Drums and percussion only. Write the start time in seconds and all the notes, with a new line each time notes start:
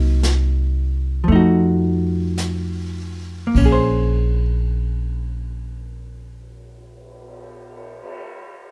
0.23 snare, hi-hat pedal
1.28 brush sweep
2.38 snare, hi-hat pedal
3.55 kick, ride
4.38 cymbal swell